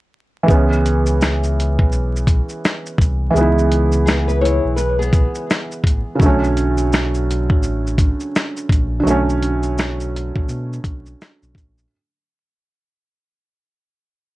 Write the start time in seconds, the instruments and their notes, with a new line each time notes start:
0.43 felt piano E3 G#3
0.48 sub bass C#2, felt piano B3, kick, shaker
0.54 felt piano C#4
0.73 shaker
0.86 closed hi-hat, shaker
1.06 shaker
1.21 finger snap, snare, shaker
1.44 shaker
1.60 closed hi-hat, shaker
1.79 sub bass B1, kick
1.92 shaker
2.16 shaker
2.27 kick, closed hi-hat, shaker
2.49 shaker
2.65 finger snap, snare, shaker
2.86 shaker
2.98 sub bass C2, kick, closed hi-hat, shaker
3.30 felt piano E3 G#3
3.35 sub bass C#2, felt piano B3, shaker
3.41 felt piano E4
3.58 shaker
3.72 closed hi-hat, shaker
3.92 shaker
4.06 nylon-string guitar B3 G#4, finger snap, snare, shaker
4.28 nylon-string guitar B4, shaker
4.41 nylon-string guitar E4 C#5
4.45 closed hi-hat, shaker
4.65 sub bass B1
4.76 nylon-string guitar B4, shaker
4.99 nylon-string guitar B3 G#4, shaker
5.13 kick, closed hi-hat, shaker
5.35 shaker
5.50 finger snap, snare, shaker
5.72 shaker
5.84 sub bass A1, kick, closed hi-hat, shaker
6.15 felt piano C#3 F#3
6.20 sub bass B1, felt piano D3 A3, kick, shaker
6.26 felt piano C#4
6.44 shaker
6.57 closed hi-hat, shaker
6.78 shaker
6.93 finger snap, snare, shaker
7.14 shaker
7.31 closed hi-hat, shaker
7.50 sub bass A1, kick
7.63 shaker
7.87 shaker
7.98 kick, closed hi-hat, shaker
8.20 shaker
8.36 finger snap, snare, shaker
8.57 shaker
8.69 sub bass A#1, kick, closed hi-hat, shaker
9.00 felt piano D3 F#3
9.06 sub bass B1, felt piano A3, shaker
9.10 felt piano C#4
9.29 shaker
9.43 closed hi-hat, shaker
9.63 shaker
9.78 finger snap, snare, shaker
10.00 shaker
10.16 closed hi-hat, shaker
10.36 sub bass B1, kick
10.48 sub bass B2, shaker
10.73 shaker
10.84 sub bass B1, kick, closed hi-hat, shaker
11.06 shaker
11.22 finger snap, snare, shaker
11.42 sub bass B1, shaker
11.55 sub bass A#1, kick, closed hi-hat, shaker
11.78 shaker